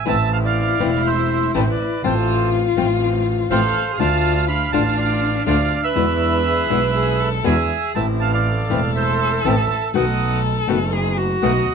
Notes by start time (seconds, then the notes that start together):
0.05 A1 E3 A3 C4 E4 E5 A5
0.33 F5 A5
0.45 D5 F5
0.80 E1 E3 A3 C4 E4
1.06 C5 E5
1.53 A1 E3 A3 C4 E4 A4 D5
1.62 C5
1.70 B4 D5
2.02 A1 F3 A3 C4 F4 A4 C5
2.76 A1 F3 A3 C4 F4
3.49 A1 F3 A3 C4 F4 A4 C5 F5
3.92 G#4
3.98 D2 D3 A3 D4 F4 F5 A5
4.48 D4 F5 B5
4.72 A1 D3 A3 D4 F4 F5 A5
4.97 D5 F5
5.46 D2 D3 A3 D4 F4 D5 F5
5.83 B4 E5
5.95 E2 B2 D3 G#3 B3 D4 E4
6.45 G#4 B4
6.70 B1 B2 D3 G#3 B3 D4 E4
6.94 G#4
7.20 A4
7.43 E2 B2 D3 G#3 B3 D4 E4 G#4 E5 G#5
7.95 A1 E3 A3 C4 E4 E5 A5
8.20 F5 A5
8.33 D5 F5
8.45 A4
8.70 E1 E3 A3 C4 E4
8.95 C5 E5
9.44 A1 E3 A3 C4 E4 E5 A5
9.93 B1 B2 D#3 A3 B3 D#4 F#4 A4 D#5 F#5
10.67 F#1 B2 D#3 A3 B3 D#4 F#4
10.92 G#4
11.17 F#4
11.41 B1 B2 D#3 A3 B3 D#4 F#4 D#5 F#5
11.66 D2